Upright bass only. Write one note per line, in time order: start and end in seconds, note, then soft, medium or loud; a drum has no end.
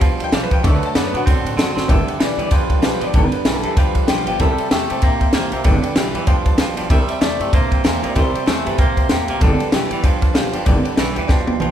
0.01 0.19 E2 loud
0.20 0.32 D2 medium
0.32 0.50 B1 loud
0.52 0.63 C#2 medium
0.64 0.81 D2 loud
0.82 muted upright bass stroke medium
0.95 1.12 F#2 loud
1.14 1.26 A2 loud
1.27 1.44 B2 loud
1.44 1.56 A2 medium
1.56 1.74 F#2 loud
1.76 1.88 F#1 medium
1.89 2.06 G1 loud
2.06 muted upright bass stroke medium
2.19 2.37 B1 medium
2.38 2.50 D2 medium
2.51 2.69 E2 medium
2.70 2.82 D2 medium
2.82 3.00 B1 loud
3.01 3.13 G1 medium
3.14 3.31 G1 loud
3.32 muted upright bass stroke medium
3.45 3.62 B1 medium
3.64 3.76 D2 medium
3.77 3.94 E2 loud
3.95 4.07 D2 medium
4.09 4.26 B1 loud
4.27 4.39 G1 medium
4.40 4.57 C2 loud
4.71 4.88 E2 medium
4.90 5.02 G2 medium
5.03 5.20 A2 loud
5.20 5.33 G2 medium
5.33 5.51 E2 loud
5.52 5.64 C2 medium
5.65 5.82 G1 loud
5.83 muted upright bass stroke medium
5.96 6.13 B1 loud
6.14 6.26 D2 medium
6.27 6.44 E2 loud
6.46 6.58 D2 medium
6.58 6.76 B1 loud
6.76 6.89 G1 medium
6.90 7.08 C2 loud
7.08 muted upright bass stroke medium
7.21 7.38 E2 medium
7.40 7.52 G2 medium
7.53 7.70 A2 loud
7.72 7.83 G2 medium
7.85 8.02 E2 loud
8.04 8.15 C2 medium
8.16 8.33 C2 loud
8.35 muted upright bass stroke medium
8.47 8.64 E2 medium
8.67 8.78 G2 medium
8.78 8.96 A2 medium
8.97 9.09 G2 medium
9.10 9.27 E2 loud
9.28 9.40 C2 medium
9.41 9.58 G1 loud
9.60 muted upright bass stroke medium
9.72 9.89 B1 medium
9.91 10.03 D2 loud
10.03 10.21 E2 medium
10.22 10.33 D2 medium
10.34 10.52 B1 loud
10.53 10.65 G1 medium
10.66 10.84 G1 loud
10.84 muted upright bass stroke medium
10.97 11.15 B1 medium
11.17 11.28 D2 medium
11.29 11.46 E2 loud
11.48 11.60 D2 medium
11.60 11.71 B1 loud